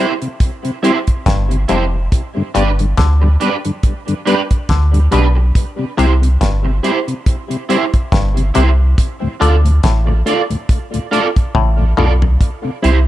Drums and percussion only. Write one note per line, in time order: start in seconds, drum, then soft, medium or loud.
0.22 closed hi-hat soft
0.40 kick loud
0.40 closed hi-hat medium
0.65 closed hi-hat soft
0.84 closed hi-hat medium
1.07 kick medium
1.07 closed hi-hat medium
1.26 kick loud
1.26 snare loud
1.26 closed hi-hat medium
1.51 closed hi-hat soft
1.69 closed hi-hat medium
2.12 kick loud
2.12 closed hi-hat medium
2.55 closed hi-hat medium
2.79 closed hi-hat medium
2.97 kick loud
2.97 snare loud
2.97 closed hi-hat loud
3.41 closed hi-hat medium
3.65 closed hi-hat medium
3.83 kick loud
3.83 closed hi-hat medium
4.08 closed hi-hat soft
4.27 closed hi-hat medium
4.51 kick medium
4.51 closed hi-hat soft
4.69 kick loud
4.69 snare loud
4.69 closed hi-hat medium
4.94 closed hi-hat soft
5.12 closed hi-hat medium
5.55 kick loud
5.55 closed hi-hat medium
5.99 closed hi-hat medium
6.23 closed hi-hat medium
6.41 kick loud
6.41 snare loud
6.41 closed hi-hat loud
6.84 closed hi-hat medium
7.08 closed hi-hat soft
7.26 kick loud
7.26 closed hi-hat medium
7.51 closed hi-hat medium
7.70 closed hi-hat medium
7.94 kick medium
7.94 closed hi-hat soft
8.12 kick loud
8.12 snare loud
8.12 closed hi-hat medium
8.37 closed hi-hat soft
8.55 closed hi-hat medium
8.98 kick loud
8.98 closed hi-hat medium
9.42 closed hi-hat medium
9.66 closed hi-hat medium
9.83 kick loud
9.83 snare loud
9.83 closed hi-hat loud
10.27 closed hi-hat medium
10.51 closed hi-hat medium
10.69 kick loud
10.69 closed hi-hat medium
10.94 closed hi-hat soft
11.13 closed hi-hat medium
11.36 kick medium
11.36 closed hi-hat medium
11.55 kick loud
11.55 high tom medium
11.98 mid tom medium
12.22 floor tom medium
12.41 kick loud
12.41 closed hi-hat medium
12.84 closed hi-hat medium